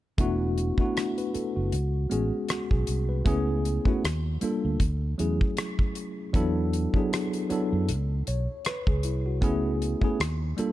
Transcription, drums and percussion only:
0.18 kick, closed hi-hat
0.58 closed hi-hat
0.78 kick
0.97 cross-stick, closed hi-hat
1.18 closed hi-hat
1.34 closed hi-hat
1.72 closed hi-hat
2.11 closed hi-hat
2.49 cross-stick, closed hi-hat
2.71 kick
2.87 closed hi-hat
3.26 kick, closed hi-hat
3.65 closed hi-hat
3.85 kick
4.05 cross-stick, closed hi-hat
4.41 closed hi-hat
4.80 kick, closed hi-hat
5.19 closed hi-hat
5.41 kick
5.57 cross-stick, closed hi-hat
5.79 kick
5.95 closed hi-hat
6.34 kick, closed hi-hat
6.73 closed hi-hat
6.94 kick
7.13 cross-stick, closed hi-hat
7.33 closed hi-hat
7.50 closed hi-hat
7.89 closed hi-hat
8.27 closed hi-hat
8.65 cross-stick, closed hi-hat
8.87 kick
9.03 closed hi-hat
9.42 kick, closed hi-hat
9.82 closed hi-hat
10.02 kick
10.20 cross-stick, closed hi-hat
10.58 closed hi-hat

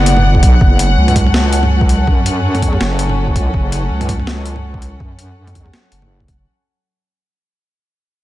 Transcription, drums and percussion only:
0.06 closed hi-hat
0.17 mid tom
0.35 kick
0.43 kick, closed hi-hat
0.61 kick
0.79 closed hi-hat
1.08 closed hi-hat, mid tom
1.16 kick, closed hi-hat, mid tom
1.26 mid tom
1.34 snare
1.53 closed hi-hat
1.63 mid tom
1.81 kick
1.89 closed hi-hat
2.07 kick
2.26 closed hi-hat
2.55 closed hi-hat, mid tom
2.62 kick, closed hi-hat, mid tom
2.73 mid tom
2.81 snare
2.99 closed hi-hat
3.09 mid tom
3.28 kick
3.36 kick, closed hi-hat
3.54 kick
3.72 closed hi-hat
4.01 closed hi-hat, mid tom
4.09 kick, closed hi-hat, mid tom
4.19 mid tom
4.27 snare
4.45 closed hi-hat
4.56 mid tom
4.74 kick
4.82 closed hi-hat
5.00 kick
5.19 closed hi-hat
5.47 closed hi-hat, mid tom
5.55 kick, closed hi-hat, mid tom
5.66 mid tom
5.74 snare
5.92 closed hi-hat
6.02 mid tom
6.20 kick
6.28 kick, closed hi-hat

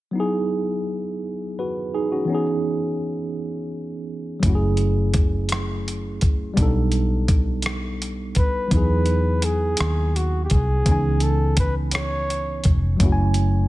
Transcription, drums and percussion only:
4.43 kick, closed hi-hat
4.77 closed hi-hat
5.14 kick, closed hi-hat
5.49 cross-stick, closed hi-hat
5.88 closed hi-hat
6.21 kick, closed hi-hat
6.57 kick, closed hi-hat
6.92 closed hi-hat
7.28 kick, closed hi-hat
7.62 cross-stick, closed hi-hat
8.02 closed hi-hat
8.35 kick, closed hi-hat
8.71 kick, closed hi-hat
9.06 closed hi-hat
9.42 closed hi-hat
9.77 cross-stick, closed hi-hat
10.16 closed hi-hat
10.50 kick, closed hi-hat
10.86 kick, closed hi-hat
11.20 closed hi-hat
11.57 kick, closed hi-hat
11.91 cross-stick, closed hi-hat
12.30 closed hi-hat
12.64 kick, closed hi-hat
13.00 kick, closed hi-hat
13.34 closed hi-hat

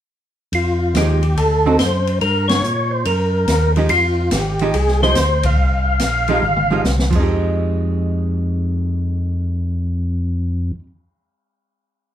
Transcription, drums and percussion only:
0.53 ride
0.95 snare, hi-hat pedal, ride
1.23 ride
1.37 ride
1.79 snare, hi-hat pedal, ride
2.07 ride
2.21 ride
2.49 snare, ride
2.64 hi-hat pedal
3.05 ride
3.48 snare, hi-hat pedal, ride
3.76 ride
3.89 ride
4.31 snare, hi-hat pedal, ride
4.59 ride
4.74 ride
4.88 snare
5.02 snare
5.15 snare, hi-hat pedal, ride
5.43 kick, ride
5.99 snare, hi-hat pedal, ride
6.28 ride
6.42 mid tom
6.56 mid tom
6.70 mid tom
6.85 snare, hi-hat pedal
6.99 snare
7.12 kick, crash

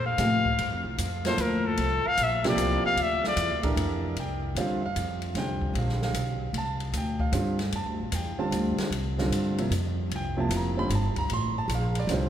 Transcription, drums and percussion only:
0.18 snare, hi-hat pedal, ride
0.45 kick
0.58 ride
0.98 hi-hat pedal, ride
1.25 snare, ride
1.38 hi-hat pedal, ride
1.77 ride
2.17 hi-hat pedal, ride
2.44 snare, ride
2.58 hi-hat pedal, ride
2.97 ride
3.24 snare
3.37 hi-hat pedal, ride
3.63 kick, ride
3.77 ride
4.16 ride
4.56 hi-hat pedal, ride
4.96 hi-hat pedal, ride
5.22 ride
5.35 snare, ride
5.61 kick
5.75 ride
5.89 snare
6.02 snare
6.14 hi-hat pedal, ride
6.54 ride
6.80 ride
6.93 hi-hat pedal, ride
7.20 kick
7.33 hi-hat pedal, ride
7.59 snare, ride
7.72 ride
8.12 hi-hat pedal, ride
8.52 hi-hat pedal, ride
8.78 snare, ride
8.92 ride
9.18 snare
9.32 hi-hat pedal, ride
9.58 ride
9.71 hi-hat pedal, ride
10.11 ride
10.50 hi-hat pedal, ride
10.90 hi-hat pedal, ride
11.16 kick, ride
11.30 ride
11.69 hi-hat pedal, ride
11.95 ride
12.09 snare, hi-hat pedal, ride

